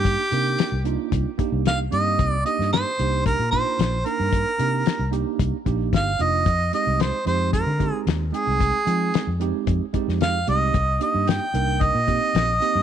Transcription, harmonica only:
0.00 0.82 G4 loud
1.67 1.79 F5 loud
1.94 2.30 D#5 medium
2.30 2.43 D5 medium
2.46 2.71 D#5 medium
2.73 3.22 C5 medium
3.26 3.51 A#4 medium
3.51 4.07 C5 medium
4.06 5.13 A#4 medium
5.96 6.24 F5 loud
6.22 6.74 D#5 medium
6.74 7.03 D#5 medium
7.01 7.27 C5 medium
7.27 7.52 C5 medium
7.53 8.03 A#4 medium
8.33 9.36 G#4 loud
10.22 10.46 F5 medium
10.49 10.98 D#5 medium
11.03 11.30 D#5 medium
11.29 11.84 G5 loud
11.83 12.82 D#5 loud

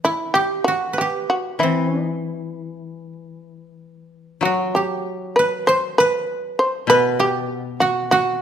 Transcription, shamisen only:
0.05 0.33 E4 medium
0.34 0.64 G4 medium
0.64 0.95 F#4 medium
0.98 1.27 G4 medium
1.30 1.58 F#4 medium
1.60 3.12 E4 medium
4.43 4.72 F#4 medium
4.75 5.33 G4 medium
5.36 5.65 B4 medium
5.67 5.96 C5 loud
5.98 6.55 B4 medium
6.59 6.87 C5 medium
6.90 7.17 B4 medium
7.20 7.53 G4 medium
7.53 7.76 F#4 medium
7.80 8.08 F#4 medium
8.11 8.42 F#4 medium

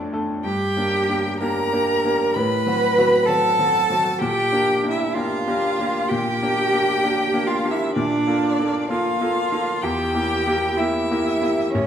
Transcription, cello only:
0.45 1.36 G4 loud
1.41 2.37 A#4 medium
2.35 3.27 B4 loud
3.26 4.20 A4 loud
4.18 4.89 G4 loud
4.90 5.16 E4 loud
5.14 6.11 F4 loud
6.09 7.49 G4 loud
7.47 7.72 F4 medium
7.71 7.95 E4 medium
7.96 8.88 D4 loud
8.90 9.85 F4 loud
9.84 10.79 G4 loud
10.77 11.71 E4 medium
11.72 11.87 C#4 medium

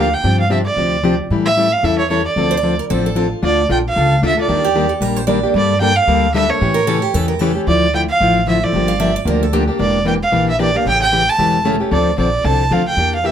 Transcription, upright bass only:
0.00 0.13 D2 medium
0.24 0.67 G2 medium
0.76 1.19 D2 medium
1.30 1.73 A2 medium
1.83 2.26 E2 medium
2.36 2.79 D2 medium
2.90 3.32 A1 medium
3.43 3.64 D2 medium
3.69 3.92 A#1 medium
3.96 4.19 C#2 medium
4.22 4.45 D2 medium
4.49 4.91 D#2 medium
5.01 5.44 A#1 medium
5.54 5.97 G2 medium
6.07 6.50 D2 medium
6.61 7.04 A2 medium
7.14 7.56 E2 medium
7.67 8.09 D2 medium
8.20 8.63 A1 medium
8.73 9.15 G1 medium
9.25 9.68 D2 medium
9.79 10.22 E1 medium
10.32 10.75 A#1 medium
10.86 11.28 A1 medium
11.38 11.81 E1 medium
11.91 12.13 D2 medium
12.18 12.40 A#1 medium
12.44 12.67 C2 medium
12.71 12.94 D2 medium
12.97 13.32 E2 medium

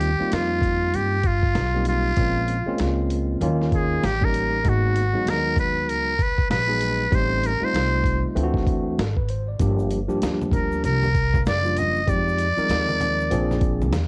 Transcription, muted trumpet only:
0.00 0.35 G4 loud
0.34 0.97 F4 medium
0.95 1.28 G4 medium
1.27 1.88 F4 loud
1.89 3.07 F4 medium
3.75 4.07 G#4 medium
4.05 4.26 G4 loud
4.25 4.70 A#4 medium
4.69 5.31 F#4 medium
5.30 5.59 A#4 loud
5.60 5.91 B4 loud
5.90 6.24 A#4 loud
6.23 6.50 B4 medium
6.51 7.17 B4 loud
7.15 7.48 C5 medium
7.46 7.66 A#4 medium
7.65 8.25 C5 loud
10.54 10.82 A#4 medium
10.85 11.42 A#4 medium
11.48 11.80 D5 loud
11.78 12.11 D#5 loud
12.09 13.94 D5 loud

